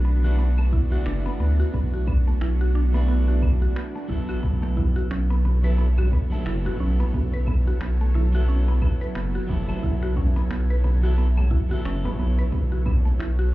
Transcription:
Already playing: analog synth bass B1, clean electric guitar E3 A3 D4 F#4, synth drone B3 D4 F#4
0.05 synth pluck B3
0.24 clean electric guitar E3 A3 D4 F#4, synth pluck F#4, shaker
0.39 synth pluck B3, shaker
0.58 synth pluck A3, claves, shaker
0.72 synth pluck E4, kick
0.90 clean electric guitar E3 A3 D4, synth pluck F#4, shaker
0.94 clean electric guitar F#4
1.06 analog synth bass F#1, synth pluck D4, finger snap, shaker
1.26 synth pluck B3, shaker
1.40 analog synth bass D2, synth pluck B3
1.60 synth pluck F#4, shaker
1.74 analog synth bass B1, synth pluck B3, kick, shaker
1.94 synth pluck F#4, shaker
2.07 synth pluck B3, kick, claves
2.27 synth pluck A3, shaker
2.41 analog synth bass B1, synth pluck E4, finger snap, shaker
2.61 synth pluck F#4, shaker
2.75 synth pluck D4, finger snap
2.93 clean electric guitar E3 A3 D4, synth pluck B3, shaker
2.97 clean electric guitar F#4
3.08 synth pluck B3, shaker
3.28 synth pluck F#4, shaker
3.42 synth pluck B3, kick, claves
3.62 synth pluck F#4, shaker
3.76 synth pluck B3, finger snap, shaker
3.96 synth pluck A3, shaker
4.08 analog synth bass A1, clean electric guitar F#3 B3 E4 A4, synth pluck E4, kick
4.29 synth pluck F#4, claves, shaker
4.43 analog synth bass B1, synth drone F#3 A4 C#5, synth pluck B3, kick, high conga, shaker
4.62 synth pluck A3, finger snap, shaker
4.77 synth pluck E4, kick, low conga
4.96 synth pluck F#4, muted conga, shaker
5.11 analog synth bass B1, synth pluck C#4, finger snap, shaker
5.30 synth pluck B3, shaker
5.45 synth pluck B3, high conga
5.63 clean electric guitar F#3 B3 E4 A4, synth pluck B4, shaker
5.78 synth pluck B3, shaker
5.98 synth pluck F#4, low conga, claves, shaker
6.12 synth pluck B3, kick
6.30 clean electric guitar F#3 B3 E4 A4, synth pluck A3, high conga, shaker
6.46 analog synth bass F#1, synth pluck E4, finger snap, shaker
6.65 synth pluck F#4, muted conga, low conga, shaker
6.80 analog synth bass B1, synth pluck C#4
7.00 synth pluck B3, shaker
7.13 analog synth bass B1, synth pluck B3, kick, high conga, shaker
7.34 synth pluck B4, shaker
7.47 synth pluck B3, kick, low conga, claves
7.67 synth pluck F#4, muted conga, shaker
7.81 analog synth bass B1, synth pluck B3, finger snap, shaker
8.01 synth pluck A3, shaker
8.14 synth pluck E4, finger snap, high conga
8.32 clean electric guitar F#3 B3 E4 A4, synth pluck F#4, shaker
8.48 synth pluck C#4, shaker
8.68 synth pluck B3, shaker
8.82 analog synth bass B1, synth pluck B3, kick, muted conga, claves
9.01 synth pluck B4, shaker
9.15 analog synth bass F#1, synth pluck B3, finger snap, shaker
9.35 synth pluck F#4, shaker
9.47 analog synth bass F#1, clean electric guitar F#3 B3 E4 A4, synth pluck B3, kick, muted conga, low conga
9.69 synth pluck A3, muted conga, claves, shaker
9.83 analog synth bass B1, synth pluck E4, kick, high conga, shaker
10.03 synth pluck F#4, finger snap, shaker
10.16 synth pluck C#4, kick, low conga
10.36 synth pluck B3, muted conga, shaker
10.50 analog synth bass B1, synth pluck B3, finger snap, shaker
10.70 synth pluck B4, shaker
10.84 synth pluck B3, high conga
11.03 clean electric guitar F#3 B3 E4 A4, synth pluck F#4, shaker
11.18 synth pluck B3, shaker
11.37 synth pluck A3, low conga, claves, shaker
11.51 synth pluck E4, kick
11.69 clean electric guitar F#3 B3 E4, synth pluck F#4, high conga, shaker
11.73 clean electric guitar A4
11.85 analog synth bass F#1, synth pluck C#4, finger snap, shaker
12.05 synth pluck B3, muted conga, low conga, shaker
12.19 analog synth bass B1, synth pluck B3
12.39 synth pluck B4, shaker
12.52 analog synth bass B1, synth pluck B3, kick, high conga, shaker
12.72 synth pluck F#4, shaker
12.86 synth pluck B3, kick, low conga, claves
13.05 synth pluck A3, muted conga, shaker
13.20 analog synth bass B1, synth pluck E4, finger snap, shaker
13.39 synth pluck F#4, shaker

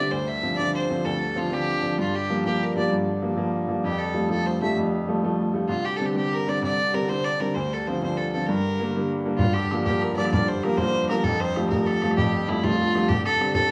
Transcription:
Already playing: harmonium G2 D3, upright piano D3 G3 C4, fiddle D5
0.11 upright piano D2, fiddle C5
0.28 fiddle E5
0.43 upright piano D3 F3 C4
0.54 fiddle D5 E5
0.59 upright piano D3 F3 C4
0.75 fiddle C5
0.90 upright piano D3 F3 C4
1.05 upright piano D2, fiddle A4
1.35 upright piano D3 F3 C4, fiddle F4
1.51 upright piano D3 F3 C4, fiddle G4
1.83 upright piano D3 F3 C4
1.97 harmonium G2 D3, upright piano G2, fiddle F4
2.15 fiddle G4
2.30 upright piano F3 G3 A#3
2.45 upright piano F3 G3 A#3, fiddle G4
2.63 fiddle A#4
2.76 upright piano F3 G3 A#3, fiddle D5
2.91 upright piano G2
3.22 upright piano F3 G3 A#3
3.37 upright piano F3 G3 A#3
3.68 upright piano F3 G3 A#3
3.84 upright piano F2, fiddle G4
3.99 fiddle A4
4.14 upright piano F3 G3 A3
4.30 upright piano F3 G3 A3, fiddle A4
4.47 fiddle C5
4.62 upright piano F3 G3 A3, fiddle E5
4.76 upright piano F2
5.08 upright piano F3 G3 A3
5.23 upright piano F3 G3 A3
5.54 upright piano F3 G3 A3
5.69 upright piano C2, fiddle F4
5.85 fiddle G4
5.97 upright piano D3 G3 C4, fiddle A4
6.06 fiddle G4
6.14 upright piano D3 G3 C4, fiddle G4
6.33 fiddle A#4
6.47 upright piano D3 G3 C4, fiddle D5
6.62 upright piano C2, fiddle D5
6.93 upright piano D3 G3 C4, fiddle A#4
7.08 upright piano D3 G3 C4, fiddle C5
7.25 fiddle D5
7.40 upright piano D3 G3 C4, fiddle A#4
7.54 upright piano D2, fiddle C5
7.73 fiddle A4
7.87 upright piano D3 F3 C4, fiddle C5
8.02 upright piano D3 F3 C4, fiddle C5
8.17 fiddle A4
8.32 upright piano D3 F3 C4, fiddle A4
8.47 upright piano G2, fiddle A#4
8.79 upright piano D3 G3 A#3
8.95 upright piano D3 G3 A#3
9.25 upright piano D3 G3 A#3
9.37 harmonium G2 D3, upright piano G2, fiddle F4, bodhran
9.53 fiddle G4, bodhran
9.71 upright piano F3 G3 A#3, bodhran
9.84 upright piano F3 G3 A#3, fiddle G4, bodhran
10.01 fiddle A#4, bodhran
10.16 upright piano F3 G3 A#3, fiddle D5, bodhran
10.25 bodhran
10.32 upright piano G2, fiddle D5, bodhran
10.48 fiddle C5, bodhran
10.63 upright piano F3 G3 A#3, fiddle A#4, bodhran
10.77 upright piano F3 G3 A#3, fiddle C5, bodhran
10.87 bodhran
10.95 bodhran
11.09 upright piano F3 G3 A#3, fiddle A#4, bodhran
11.24 upright piano F2, fiddle A4, bodhran
11.40 fiddle C5, bodhran
11.56 upright piano F3 G3 A3, bodhran
11.70 upright piano F3 G3 A3, fiddle A#4, bodhran
11.86 fiddle A4, bodhran
12.02 upright piano F3 G3 A3, bodhran
12.11 bodhran
12.16 upright piano F2, fiddle G4, bodhran
12.34 bodhran
12.48 upright piano F3 G3 A3, fiddle E4, bodhran
12.64 upright piano F3 G3 A3, fiddle F4, bodhran
12.73 bodhran
12.81 bodhran
12.95 upright piano F3 G3 A3, bodhran
13.08 upright piano C2, fiddle G4, bodhran
13.25 fiddle A4, bodhran
13.41 upright piano D3 G3 C4, bodhran
13.53 upright piano D3 G3 C4, fiddle A4, bodhran

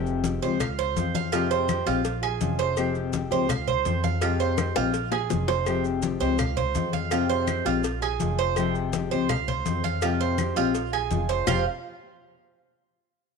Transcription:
Already playing: upright bass F1, nylon-string guitar C3 F3 G#3 C4 G4
0.06 high conga, maracas
0.24 nylon-string guitar F3 G#3 C4 G4, cowbell, high conga, maracas
0.42 upright bass C#2, nylon-string guitar F3 G#3 C4 G4, cuban tres C5, high conga, maracas
0.60 cuban tres F5, muted nylon-string guitar stroke, cowbell, high conga, low conga, claves, maracas
0.78 cuban tres C5, high conga, maracas
0.96 upright bass F2, nylon-string guitar F3 G#3 C4 F4, cowbell, high conga, maracas
1.15 cuban tres F5, high conga, maracas
1.32 nylon-string guitar C3 F3 G#3 C4 G4, cuban tres F4, cowbell, claves, maracas
1.51 cuban tres C5, high conga, maracas
1.69 nylon-string guitar F3 G#3 C4 G4, cowbell, high conga, claves, maracas
1.86 upright bass A#1, nylon-string guitar F3 G#3 C4 G4, cuban tres F4, cowbell, high conga, maracas
2.05 muted nylon-string guitar stroke, cowbell, high conga, maracas
2.23 cuban tres G#4, high conga, claves, maracas
2.41 upright bass F1, nylon-string guitar F3 G#3 C#4 F4, cowbell, high conga, maracas
2.59 cuban tres C5, cowbell, high conga, maracas
2.77 nylon-string guitar C3 F3 G#3 C4 G4, cowbell, high conga, claves, maracas
2.95 high conga, maracas
3.13 nylon-string guitar F3 G#3 C4 G4, cowbell, high conga, maracas
3.31 upright bass C#2, nylon-string guitar F3 G#3 C4 G4, cuban tres C5, high conga, maracas
3.49 cuban tres F5, muted nylon-string guitar stroke, cowbell, high conga, low conga, claves, maracas
3.67 cuban tres C5, high conga, low conga, maracas
3.85 upright bass F2, nylon-string guitar F3 G#3 C4 F4, cowbell, high conga, maracas
4.04 cuban tres F5, high conga, maracas
4.21 nylon-string guitar C3 F3 G#3 C4 G4, cuban tres F4, cowbell, claves, maracas
4.40 cuban tres C5, high conga, maracas
4.58 nylon-string guitar F3 G#3 C4 G4, cowbell, high bongo, high conga, claves, maracas
4.76 upright bass A#1, nylon-string guitar F3 G#3 C4 G4, cuban tres F4, cowbell, high bongo, high conga, maracas
4.94 muted nylon-string guitar stroke, cowbell, high conga, maracas
5.12 cuban tres G#4, low bongo, high conga, claves, maracas
5.30 upright bass F1, nylon-string guitar F3 G#3 C#4 F4, cowbell, low bongo, high conga, maracas
5.48 cuban tres C5, cowbell, low bongo, high conga, maracas
5.66 nylon-string guitar C3 F3 G#3 C4 G4, cowbell, high conga, claves, maracas
5.85 high conga, maracas
6.02 nylon-string guitar F3 G#3 C4 G4, cowbell, high conga, maracas
6.20 upright bass C#2, nylon-string guitar F3 G#3 C4 G4, cuban tres C5, high conga, maracas
6.39 cuban tres F5, muted nylon-string guitar stroke, cowbell, high conga, low conga, claves, maracas
6.57 cuban tres C5, high conga, low conga, maracas
6.75 upright bass F2, nylon-string guitar F3 G#3 C4 F4, cowbell, high conga, maracas
6.93 cuban tres F5, high conga, maracas
7.11 nylon-string guitar C3 F3 G#3 C4 G4, cuban tres F4, cowbell, claves, maracas
7.29 cuban tres C5, high conga, maracas
7.47 nylon-string guitar F3 G#3 C4 G4, cowbell, high conga, claves, maracas
7.65 upright bass A#1, nylon-string guitar F3 G#3 C4 G4, cuban tres F4, cowbell, high conga, maracas
7.84 muted nylon-string guitar stroke, cowbell, high conga, maracas
8.02 cuban tres G#4, high conga, claves, maracas
8.20 upright bass F1, nylon-string guitar F3 G#3 C#4 F4, cowbell, high conga, maracas
8.38 cuban tres C5, cowbell, high conga, maracas
8.56 nylon-string guitar C3 F3 G#3 C4 G4, cowbell, high conga, claves, maracas
8.75 high conga, maracas
8.93 nylon-string guitar F3 G#3 C4 G4, cowbell, high conga, maracas
9.11 upright bass C#2, nylon-string guitar F3 G#3 C4 G4, cuban tres C5, high conga, maracas
9.29 cuban tres F5, muted nylon-string guitar stroke, cowbell, high conga, low conga, claves, maracas
9.47 cuban tres C5, high conga, low conga, maracas
9.66 upright bass F2, nylon-string guitar F3 G#3 C4 F4, cowbell, high conga, maracas
9.84 cuban tres F5, high conga, maracas
10.02 nylon-string guitar C3 F3 G#3 C4 G4, cuban tres F4, cowbell, claves, maracas
10.20 cuban tres C5, high conga, maracas
10.38 nylon-string guitar F3 G#3 C4 G4, cowbell, high conga, claves, maracas
10.56 upright bass A#1, nylon-string guitar F3 G#3 C4 G4, cuban tres F4, cowbell, high conga, maracas
10.75 muted nylon-string guitar stroke, cowbell, high conga, maracas
10.93 cuban tres G#4, high conga, claves, maracas
11.11 upright bass F1, nylon-string guitar F3 G#3 C#4 F4, cowbell, high conga, maracas
11.29 cuban tres C5, cowbell, maracas
11.47 upright bass F1, nylon-string guitar F2 C3 F3 G#3 C4 G4, cuban tres F4 C5 F5, low bongo, low conga, claves, maracas

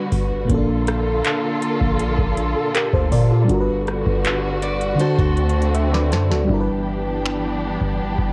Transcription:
Already playing: string section D3 G3 B3 F#4, fm electric piano G3 D4 F#4 B4
0.12 808-style bass G1, kick, open hi-hat
0.45 fm electric piano A#2 A#3
0.50 808-style bass A#1, string section D3 A#3 F4 A4, fm electric piano C#4, kick, closed hi-hat
0.54 fm electric piano D4 A4
0.87 cross-stick, closed hi-hat
1.25 clap, closed hi-hat
1.62 closed hi-hat
1.81 808-style bass A#1, kick
2.00 closed hi-hat
2.18 808-style bass A#1, kick
2.37 closed hi-hat
2.74 fm electric piano G4 A#4, clap, closed hi-hat
2.93 808-style bass D2, fm electric piano A4 C5, kick
3.12 808-style bass A#2, fm electric piano A#4 D5, kick, open hi-hat
3.31 fm electric piano F4 A4
3.44 fm electric piano G3 D4
3.49 808-style bass G1, string section D3 G3 B3 F#4, fm electric piano F#4, kick, closed hi-hat
3.54 fm electric piano A#4
3.60 fm electric piano B4
3.87 cross-stick, closed hi-hat
4.06 808-style bass G1, kick
4.24 clap, closed hi-hat
4.62 steel-string acoustic guitar B4 D5, closed hi-hat
4.81 closed hi-hat
4.95 fm electric piano D3 D4
4.99 string section D3 A3 C4, fm electric piano F#4, steel-string acoustic guitar A4 C5, closed hi-hat
5.04 fm electric piano C5
5.18 808-style bass D2, steel-string acoustic guitar F#4 A4, kick
5.37 closed hi-hat
5.49 closed hi-hat
5.62 closed hi-hat
5.74 fm electric piano C5 E5, closed hi-hat
5.93 fm electric piano B4 D5, snare
6.12 808-style bass F#2, fm electric piano A4 C5, snare, closed hi-hat
6.31 808-style bass D2, fm electric piano F#4 A4, snare
6.45 fm electric piano G3 D4
6.49 808-style bass G1, string section E3 B3 D4 G4, fm electric piano E4, kick
6.54 fm electric piano A#4
6.61 fm electric piano B4
7.26 finger snap
7.81 808-style bass G1, kick
8.18 808-style bass G1, kick

